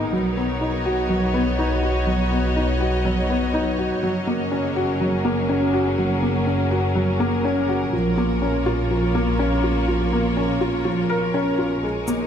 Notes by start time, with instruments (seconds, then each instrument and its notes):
Already playing: string section G#3 D#4 A#4, felt piano G#3 A#3 B3 D#4
0.12 double bass section B1, felt piano F#3, string section B3
0.28 string section C#5
0.37 felt piano B3, string section F#4
0.61 felt piano D#4
0.67 string section D#5
0.85 felt piano F#4
1.09 felt piano F#3
1.34 felt piano B3
1.59 felt piano D#4
1.83 felt piano F#4
2.07 felt piano F#3
2.32 felt piano B3
2.56 felt piano D#4
2.80 felt piano F#4
3.05 felt piano F#3
3.30 felt piano B3
3.54 felt piano D#4
3.78 felt piano F#4
4.03 double bass section F#1, felt piano F#3, string section F#3
4.08 string section C#4
4.27 felt piano A#3
4.50 felt piano C#4, string section G#4
4.75 felt piano F#4, string section A#4
5.01 felt piano F#3
5.25 felt piano A#3
5.49 felt piano C#4
5.73 felt piano F#4
5.98 felt piano F#3
6.22 felt piano A#3
6.47 felt piano C#4
6.71 felt piano F#4
6.95 felt piano F#3
7.20 felt piano A#3
7.45 felt piano C#4
7.69 felt piano F#4
7.92 double bass section A#1, felt piano F3, string section A#3
8.05 string section F4 C#5
8.18 felt piano A#3
8.42 felt piano C#4
8.66 felt piano F4
8.91 felt piano F3
9.15 felt piano A#3
9.39 felt piano C#4
9.64 felt piano F4
9.88 felt piano F3
10.13 felt piano A#3
10.37 felt piano C#4
10.61 felt piano F4
10.85 felt piano F3
11.09 felt piano A#4
11.34 felt piano C#4
11.58 felt piano F4
11.83 string section G#3, felt piano G#3
12.03 string section D#4
12.07 felt piano A#3, shaker